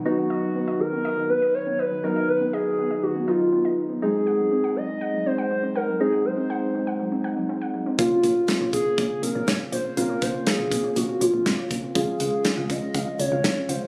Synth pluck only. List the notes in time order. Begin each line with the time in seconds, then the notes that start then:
0.05 D#3
0.18 B3
0.30 D#5
0.43 D#3
0.55 B3
0.68 D#5
0.80 D#3
0.92 B3
1.05 D#5
1.17 D#3
1.29 B3
1.42 D#5
1.54 D#3
1.67 B3
1.79 D#5
1.92 D#3
2.04 B3
2.16 D#5
2.29 D#3
2.41 B3
2.53 D#5
2.66 D#3
2.78 B3
2.91 D#5
3.03 D#3
3.15 B3
3.28 D#5
3.40 D#3
3.52 B3
3.65 D#5
3.77 D#3
3.90 B3
4.02 F#3
4.14 C4
4.27 F#5
4.39 F#3
4.51 C4
4.64 F#5
4.76 F#3
4.89 C4
5.01 F#5
5.14 F#3
5.26 C4
5.38 F#5
5.51 F#3
5.63 C4
5.75 F#5
5.88 F#3
6.00 C4
6.13 F#5
6.25 F#3
6.37 C4
6.50 F#5
6.62 F#3
6.75 C4
6.87 F#5
7.00 F#3
7.12 C4
7.24 F#5
7.37 F#3
7.49 C4
7.62 F#5
7.74 F#3
7.86 C4
7.99 C#3
8.11 C4
8.24 C#5
8.36 C#3
8.49 C4
8.61 C#5
8.73 C#3
8.86 C4
8.98 C#5
9.11 C#3
9.23 C4
9.35 C#5
9.48 C#3
9.60 C4
9.72 C#5
9.85 C#3
9.97 C4
10.10 C#5
10.22 C#3
10.34 C4
10.47 C#5
10.59 C#3
10.72 C4
10.84 C#5
10.96 C#3
11.09 C4
11.21 C#5
11.33 C#3
11.46 C4
11.58 C#5
11.71 C#3
11.83 C4
11.95 F3
12.08 C#4
12.20 F5
12.33 F3
12.45 C#4
12.57 F5
12.70 F3
12.82 C#4
12.95 F5
13.07 F3
13.19 C#4
13.32 F5
13.44 F3
13.57 C#4
13.69 F5
13.81 F3